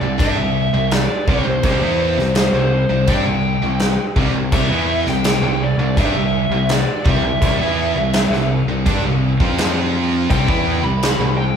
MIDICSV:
0, 0, Header, 1, 5, 480
1, 0, Start_track
1, 0, Key_signature, 0, "major"
1, 0, Tempo, 721154
1, 1097, Time_signature, 4, 2, 24, 8
1, 7698, End_track
2, 0, Start_track
2, 0, Title_t, "Lead electric guitar"
2, 0, Program_c, 0, 29
2, 0, Note_on_c, 0, 74, 91
2, 136, Note_on_c, 0, 76, 102
2, 140, Note_off_c, 0, 74, 0
2, 611, Note_on_c, 0, 74, 96
2, 631, Note_off_c, 0, 76, 0
2, 859, Note_off_c, 0, 74, 0
2, 861, Note_on_c, 0, 72, 90
2, 1557, Note_off_c, 0, 72, 0
2, 1565, Note_on_c, 0, 72, 93
2, 2060, Note_on_c, 0, 79, 94
2, 2066, Note_off_c, 0, 72, 0
2, 2752, Note_off_c, 0, 79, 0
2, 3018, Note_on_c, 0, 76, 94
2, 3352, Note_off_c, 0, 76, 0
2, 3389, Note_on_c, 0, 79, 120
2, 3749, Note_on_c, 0, 74, 97
2, 3754, Note_off_c, 0, 79, 0
2, 3990, Note_off_c, 0, 74, 0
2, 3991, Note_on_c, 0, 76, 103
2, 4477, Note_on_c, 0, 74, 96
2, 4479, Note_off_c, 0, 76, 0
2, 4714, Note_off_c, 0, 74, 0
2, 4719, Note_on_c, 0, 76, 95
2, 5642, Note_off_c, 0, 76, 0
2, 6859, Note_on_c, 0, 79, 106
2, 7193, Note_off_c, 0, 79, 0
2, 7213, Note_on_c, 0, 83, 117
2, 7550, Note_off_c, 0, 83, 0
2, 7573, Note_on_c, 0, 79, 88
2, 7698, Note_off_c, 0, 79, 0
2, 7698, End_track
3, 0, Start_track
3, 0, Title_t, "Distorted electric guitar"
3, 0, Program_c, 1, 30
3, 10, Note_on_c, 1, 48, 59
3, 17, Note_on_c, 1, 55, 66
3, 117, Note_off_c, 1, 55, 0
3, 125, Note_on_c, 1, 55, 90
3, 132, Note_on_c, 1, 62, 114
3, 133, Note_off_c, 1, 48, 0
3, 238, Note_off_c, 1, 55, 0
3, 246, Note_on_c, 1, 48, 61
3, 246, Note_on_c, 1, 55, 71
3, 247, Note_off_c, 1, 62, 0
3, 443, Note_off_c, 1, 48, 0
3, 443, Note_off_c, 1, 55, 0
3, 485, Note_on_c, 1, 48, 69
3, 489, Note_on_c, 1, 55, 82
3, 683, Note_off_c, 1, 48, 0
3, 685, Note_off_c, 1, 55, 0
3, 846, Note_on_c, 1, 48, 91
3, 853, Note_on_c, 1, 55, 105
3, 964, Note_off_c, 1, 48, 0
3, 967, Note_off_c, 1, 55, 0
3, 972, Note_on_c, 1, 48, 75
3, 975, Note_on_c, 1, 55, 90
3, 1079, Note_off_c, 1, 48, 0
3, 1085, Note_off_c, 1, 55, 0
3, 1087, Note_on_c, 1, 48, 85
3, 1093, Note_on_c, 1, 55, 115
3, 1205, Note_off_c, 1, 48, 0
3, 1207, Note_off_c, 1, 55, 0
3, 1208, Note_on_c, 1, 52, 100
3, 1211, Note_on_c, 1, 59, 104
3, 1216, Note_on_c, 1, 64, 99
3, 1445, Note_off_c, 1, 52, 0
3, 1447, Note_off_c, 1, 59, 0
3, 1449, Note_off_c, 1, 64, 0
3, 1449, Note_on_c, 1, 48, 69
3, 1453, Note_on_c, 1, 55, 71
3, 1645, Note_off_c, 1, 48, 0
3, 1647, Note_off_c, 1, 55, 0
3, 1695, Note_on_c, 1, 48, 66
3, 1699, Note_on_c, 1, 55, 83
3, 1888, Note_off_c, 1, 48, 0
3, 1890, Note_off_c, 1, 55, 0
3, 1934, Note_on_c, 1, 48, 75
3, 1939, Note_on_c, 1, 55, 76
3, 2050, Note_off_c, 1, 55, 0
3, 2056, Note_off_c, 1, 48, 0
3, 2058, Note_on_c, 1, 55, 93
3, 2066, Note_on_c, 1, 62, 110
3, 2171, Note_off_c, 1, 55, 0
3, 2174, Note_off_c, 1, 62, 0
3, 2182, Note_on_c, 1, 48, 69
3, 2187, Note_on_c, 1, 55, 68
3, 2372, Note_off_c, 1, 48, 0
3, 2374, Note_off_c, 1, 55, 0
3, 2421, Note_on_c, 1, 48, 70
3, 2422, Note_on_c, 1, 55, 74
3, 2611, Note_off_c, 1, 48, 0
3, 2611, Note_off_c, 1, 55, 0
3, 2768, Note_on_c, 1, 48, 95
3, 2775, Note_on_c, 1, 55, 106
3, 2883, Note_off_c, 1, 48, 0
3, 2889, Note_off_c, 1, 55, 0
3, 2891, Note_on_c, 1, 48, 67
3, 2896, Note_on_c, 1, 55, 90
3, 3001, Note_off_c, 1, 48, 0
3, 3007, Note_off_c, 1, 55, 0
3, 3009, Note_on_c, 1, 48, 83
3, 3015, Note_on_c, 1, 55, 118
3, 3126, Note_off_c, 1, 48, 0
3, 3129, Note_off_c, 1, 55, 0
3, 3132, Note_on_c, 1, 52, 94
3, 3139, Note_on_c, 1, 59, 103
3, 3144, Note_on_c, 1, 64, 106
3, 3368, Note_off_c, 1, 52, 0
3, 3371, Note_off_c, 1, 59, 0
3, 3373, Note_off_c, 1, 64, 0
3, 3374, Note_on_c, 1, 48, 70
3, 3377, Note_on_c, 1, 55, 82
3, 3568, Note_off_c, 1, 48, 0
3, 3569, Note_off_c, 1, 55, 0
3, 3616, Note_on_c, 1, 48, 72
3, 3616, Note_on_c, 1, 55, 76
3, 3809, Note_off_c, 1, 48, 0
3, 3809, Note_off_c, 1, 55, 0
3, 3863, Note_on_c, 1, 48, 60
3, 3864, Note_on_c, 1, 55, 70
3, 3975, Note_off_c, 1, 55, 0
3, 3980, Note_off_c, 1, 48, 0
3, 3983, Note_on_c, 1, 55, 90
3, 3990, Note_on_c, 1, 62, 103
3, 4093, Note_off_c, 1, 55, 0
3, 4096, Note_off_c, 1, 62, 0
3, 4099, Note_on_c, 1, 48, 63
3, 4102, Note_on_c, 1, 55, 71
3, 4290, Note_off_c, 1, 48, 0
3, 4292, Note_off_c, 1, 55, 0
3, 4343, Note_on_c, 1, 48, 72
3, 4350, Note_on_c, 1, 55, 78
3, 4532, Note_off_c, 1, 48, 0
3, 4536, Note_off_c, 1, 55, 0
3, 4705, Note_on_c, 1, 48, 93
3, 4715, Note_on_c, 1, 55, 115
3, 4814, Note_off_c, 1, 48, 0
3, 4819, Note_off_c, 1, 55, 0
3, 4831, Note_on_c, 1, 48, 74
3, 4835, Note_on_c, 1, 55, 92
3, 4938, Note_off_c, 1, 48, 0
3, 4946, Note_off_c, 1, 55, 0
3, 4946, Note_on_c, 1, 48, 98
3, 4957, Note_on_c, 1, 55, 108
3, 5055, Note_off_c, 1, 48, 0
3, 5060, Note_off_c, 1, 55, 0
3, 5061, Note_on_c, 1, 52, 98
3, 5068, Note_on_c, 1, 59, 96
3, 5077, Note_on_c, 1, 64, 109
3, 5292, Note_off_c, 1, 52, 0
3, 5295, Note_off_c, 1, 59, 0
3, 5300, Note_off_c, 1, 64, 0
3, 5309, Note_on_c, 1, 48, 62
3, 5312, Note_on_c, 1, 55, 71
3, 5495, Note_off_c, 1, 48, 0
3, 5497, Note_off_c, 1, 55, 0
3, 5543, Note_on_c, 1, 48, 72
3, 5547, Note_on_c, 1, 55, 73
3, 5732, Note_off_c, 1, 48, 0
3, 5734, Note_off_c, 1, 55, 0
3, 5783, Note_on_c, 1, 48, 68
3, 5785, Note_on_c, 1, 55, 70
3, 5896, Note_off_c, 1, 55, 0
3, 5900, Note_off_c, 1, 48, 0
3, 5904, Note_on_c, 1, 55, 103
3, 5913, Note_on_c, 1, 62, 92
3, 6014, Note_off_c, 1, 55, 0
3, 6018, Note_off_c, 1, 62, 0
3, 6026, Note_on_c, 1, 48, 60
3, 6031, Note_on_c, 1, 55, 75
3, 6214, Note_off_c, 1, 48, 0
3, 6216, Note_off_c, 1, 55, 0
3, 6258, Note_on_c, 1, 53, 82
3, 6265, Note_on_c, 1, 60, 100
3, 6268, Note_on_c, 1, 65, 103
3, 6851, Note_off_c, 1, 53, 0
3, 6854, Note_off_c, 1, 60, 0
3, 6855, Note_off_c, 1, 65, 0
3, 6856, Note_on_c, 1, 48, 91
3, 6862, Note_on_c, 1, 55, 101
3, 6970, Note_off_c, 1, 48, 0
3, 6973, Note_off_c, 1, 55, 0
3, 6980, Note_on_c, 1, 52, 88
3, 6986, Note_on_c, 1, 59, 100
3, 6992, Note_on_c, 1, 64, 106
3, 7212, Note_off_c, 1, 52, 0
3, 7214, Note_off_c, 1, 59, 0
3, 7218, Note_off_c, 1, 64, 0
3, 7222, Note_on_c, 1, 55, 78
3, 7226, Note_on_c, 1, 48, 71
3, 7412, Note_off_c, 1, 55, 0
3, 7414, Note_off_c, 1, 48, 0
3, 7463, Note_on_c, 1, 48, 66
3, 7470, Note_on_c, 1, 55, 77
3, 7652, Note_off_c, 1, 48, 0
3, 7655, Note_off_c, 1, 55, 0
3, 7698, End_track
4, 0, Start_track
4, 0, Title_t, "Fingered electric bass"
4, 0, Program_c, 2, 33
4, 9, Note_on_c, 2, 36, 84
4, 122, Note_off_c, 2, 36, 0
4, 126, Note_on_c, 2, 43, 97
4, 242, Note_off_c, 2, 43, 0
4, 248, Note_on_c, 2, 36, 75
4, 475, Note_off_c, 2, 36, 0
4, 487, Note_on_c, 2, 36, 75
4, 715, Note_off_c, 2, 36, 0
4, 850, Note_on_c, 2, 36, 95
4, 965, Note_off_c, 2, 36, 0
4, 968, Note_on_c, 2, 36, 81
4, 1079, Note_off_c, 2, 36, 0
4, 1083, Note_on_c, 2, 36, 105
4, 1199, Note_off_c, 2, 36, 0
4, 1203, Note_on_c, 2, 40, 87
4, 1433, Note_off_c, 2, 40, 0
4, 1446, Note_on_c, 2, 36, 76
4, 1674, Note_off_c, 2, 36, 0
4, 1683, Note_on_c, 2, 36, 92
4, 1913, Note_off_c, 2, 36, 0
4, 1927, Note_on_c, 2, 36, 78
4, 2043, Note_off_c, 2, 36, 0
4, 2047, Note_on_c, 2, 43, 92
4, 2163, Note_off_c, 2, 43, 0
4, 2168, Note_on_c, 2, 36, 94
4, 2395, Note_off_c, 2, 36, 0
4, 2410, Note_on_c, 2, 36, 76
4, 2637, Note_off_c, 2, 36, 0
4, 2771, Note_on_c, 2, 36, 98
4, 2885, Note_off_c, 2, 36, 0
4, 2890, Note_on_c, 2, 36, 88
4, 3005, Note_off_c, 2, 36, 0
4, 3008, Note_on_c, 2, 36, 101
4, 3122, Note_off_c, 2, 36, 0
4, 3126, Note_on_c, 2, 40, 96
4, 3354, Note_off_c, 2, 40, 0
4, 3365, Note_on_c, 2, 36, 72
4, 3594, Note_off_c, 2, 36, 0
4, 3606, Note_on_c, 2, 36, 90
4, 3834, Note_off_c, 2, 36, 0
4, 3844, Note_on_c, 2, 36, 88
4, 3962, Note_off_c, 2, 36, 0
4, 3972, Note_on_c, 2, 43, 97
4, 4080, Note_off_c, 2, 43, 0
4, 4084, Note_on_c, 2, 36, 88
4, 4313, Note_off_c, 2, 36, 0
4, 4324, Note_on_c, 2, 36, 81
4, 4553, Note_off_c, 2, 36, 0
4, 4693, Note_on_c, 2, 36, 88
4, 4798, Note_off_c, 2, 36, 0
4, 4802, Note_on_c, 2, 36, 90
4, 4921, Note_off_c, 2, 36, 0
4, 4933, Note_on_c, 2, 36, 100
4, 5039, Note_off_c, 2, 36, 0
4, 5043, Note_on_c, 2, 40, 80
4, 5273, Note_off_c, 2, 40, 0
4, 5289, Note_on_c, 2, 36, 76
4, 5516, Note_off_c, 2, 36, 0
4, 5527, Note_on_c, 2, 36, 90
4, 5755, Note_off_c, 2, 36, 0
4, 5767, Note_on_c, 2, 36, 77
4, 5883, Note_off_c, 2, 36, 0
4, 5895, Note_on_c, 2, 43, 86
4, 6000, Note_off_c, 2, 43, 0
4, 6004, Note_on_c, 2, 36, 83
4, 6233, Note_off_c, 2, 36, 0
4, 6258, Note_on_c, 2, 41, 86
4, 6831, Note_off_c, 2, 41, 0
4, 6854, Note_on_c, 2, 36, 88
4, 6967, Note_off_c, 2, 36, 0
4, 6975, Note_on_c, 2, 40, 86
4, 7199, Note_off_c, 2, 40, 0
4, 7205, Note_on_c, 2, 36, 73
4, 7434, Note_off_c, 2, 36, 0
4, 7449, Note_on_c, 2, 36, 96
4, 7676, Note_off_c, 2, 36, 0
4, 7698, End_track
5, 0, Start_track
5, 0, Title_t, "Drums"
5, 129, Note_on_c, 9, 36, 111
5, 131, Note_on_c, 9, 49, 64
5, 196, Note_off_c, 9, 36, 0
5, 198, Note_off_c, 9, 49, 0
5, 607, Note_on_c, 9, 49, 52
5, 613, Note_on_c, 9, 38, 106
5, 674, Note_off_c, 9, 49, 0
5, 680, Note_off_c, 9, 38, 0
5, 850, Note_on_c, 9, 36, 119
5, 916, Note_off_c, 9, 36, 0
5, 1086, Note_on_c, 9, 49, 60
5, 1089, Note_on_c, 9, 36, 105
5, 1153, Note_off_c, 9, 49, 0
5, 1156, Note_off_c, 9, 36, 0
5, 1457, Note_on_c, 9, 38, 30
5, 1524, Note_off_c, 9, 38, 0
5, 1564, Note_on_c, 9, 49, 58
5, 1570, Note_on_c, 9, 38, 113
5, 1631, Note_off_c, 9, 49, 0
5, 1637, Note_off_c, 9, 38, 0
5, 2046, Note_on_c, 9, 49, 62
5, 2049, Note_on_c, 9, 36, 100
5, 2113, Note_off_c, 9, 49, 0
5, 2116, Note_off_c, 9, 36, 0
5, 2526, Note_on_c, 9, 49, 50
5, 2532, Note_on_c, 9, 38, 92
5, 2593, Note_off_c, 9, 49, 0
5, 2599, Note_off_c, 9, 38, 0
5, 2770, Note_on_c, 9, 36, 106
5, 2837, Note_off_c, 9, 36, 0
5, 3009, Note_on_c, 9, 49, 67
5, 3010, Note_on_c, 9, 36, 106
5, 3075, Note_off_c, 9, 49, 0
5, 3077, Note_off_c, 9, 36, 0
5, 3372, Note_on_c, 9, 38, 34
5, 3438, Note_off_c, 9, 38, 0
5, 3489, Note_on_c, 9, 49, 62
5, 3495, Note_on_c, 9, 38, 113
5, 3556, Note_off_c, 9, 49, 0
5, 3562, Note_off_c, 9, 38, 0
5, 3975, Note_on_c, 9, 36, 114
5, 3979, Note_on_c, 9, 49, 59
5, 4042, Note_off_c, 9, 36, 0
5, 4046, Note_off_c, 9, 49, 0
5, 4453, Note_on_c, 9, 49, 61
5, 4459, Note_on_c, 9, 38, 102
5, 4520, Note_off_c, 9, 49, 0
5, 4526, Note_off_c, 9, 38, 0
5, 4697, Note_on_c, 9, 36, 122
5, 4763, Note_off_c, 9, 36, 0
5, 4937, Note_on_c, 9, 36, 115
5, 4940, Note_on_c, 9, 49, 70
5, 5004, Note_off_c, 9, 36, 0
5, 5007, Note_off_c, 9, 49, 0
5, 5414, Note_on_c, 9, 49, 61
5, 5420, Note_on_c, 9, 38, 114
5, 5480, Note_off_c, 9, 49, 0
5, 5486, Note_off_c, 9, 38, 0
5, 5547, Note_on_c, 9, 38, 33
5, 5613, Note_off_c, 9, 38, 0
5, 5898, Note_on_c, 9, 36, 105
5, 5900, Note_on_c, 9, 49, 61
5, 5965, Note_off_c, 9, 36, 0
5, 5966, Note_off_c, 9, 49, 0
5, 6258, Note_on_c, 9, 36, 110
5, 6324, Note_off_c, 9, 36, 0
5, 6379, Note_on_c, 9, 49, 55
5, 6385, Note_on_c, 9, 38, 99
5, 6445, Note_off_c, 9, 49, 0
5, 6451, Note_off_c, 9, 38, 0
5, 6859, Note_on_c, 9, 36, 107
5, 6860, Note_on_c, 9, 49, 58
5, 6925, Note_off_c, 9, 36, 0
5, 6926, Note_off_c, 9, 49, 0
5, 6978, Note_on_c, 9, 36, 114
5, 7045, Note_off_c, 9, 36, 0
5, 7339, Note_on_c, 9, 49, 61
5, 7345, Note_on_c, 9, 38, 110
5, 7405, Note_off_c, 9, 49, 0
5, 7411, Note_off_c, 9, 38, 0
5, 7698, End_track
0, 0, End_of_file